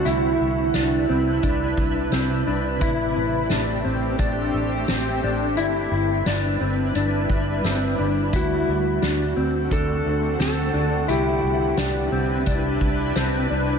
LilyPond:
<<
  \new Staff \with { instrumentName = "Electric slide guitar" } { \time 4/4 \key c \lydian \tempo 4 = 87 e'2.~ e'8 r8 | r1 | r1 | fis'2 a'4 a'4 |
g'2.~ g'8 r8 | }
  \new Staff \with { instrumentName = "Ambient pad" } { \time 4/4 \key c \lydian <c d' e' b'>1 | <a c' g'>1 | <g d' e' b'>1 | <d a c' fis'>1 |
<c d' e' b'>1 | }
  \new Staff \with { instrumentName = "Clean electric guitar" } { \time 4/4 \key c \lydian e'4 d'8 c'8 d'4 c'8 d'8 | e'4 d'8 c'8 d'4 c'8 d'8 | e'4 d'8 c'8 d'4 c'8 d'8 | e'4 d'8 c'8 d'4 c'8 d'8 |
e'4 d'8 c'8 d'4 c'8 d'8 | }
  \new Staff \with { instrumentName = "Fingered electric bass" } { \clef bass \time 4/4 \key c \lydian c,8 c,8 c,8 c,8 c,8 c,8 c,8 c,8 | a,,8 a,,8 a,,8 a,,8 a,,8 a,,8 a,,8 a,,8 | g,,8 g,,8 g,,8 g,,8 g,,8 g,,8 g,,8 g,,8 | d,8 d,8 d,8 d,8 d,8 d,8 d,8 d,8 |
c,8 c,8 c,8 c,8 c,8 c,8 c,8 c,8 | }
  \new DrumStaff \with { instrumentName = "Drums" } \drummode { \time 4/4 hh4 <hh sn>4 <hh bd>8 bd8 <hh sn>4 | <hh bd>4 <hh sn>4 <hh bd>4 <hh sn>4 | hh4 <hh sn>4 hh8 bd8 <hh sn>4 | <hh bd>4 <hh sn>4 <hh bd>4 <hh sn>4 |
hh4 <hh sn>4 <hh bd>8 bd8 <hh sn>4 | }
>>